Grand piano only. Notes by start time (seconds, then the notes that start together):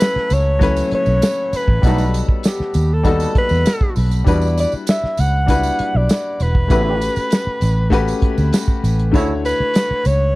Already playing: F#3 A3 C#4 E4 A4
0.59 F#3 A3 C#4 E4 B4
1.82 G3 B3 D#4 F#4 A4
3.03 G3 B3 D#4 F#4 A4
4.24 G3 D4 E4 F#4 B4
5.46 G3 D4 E4 F#4 B4
6.68 A3 C#4 F#4 G4 B4
7.90 A3 C#4 F#4 G4 B4
9.11 D3 A3 E4 F#4 C#5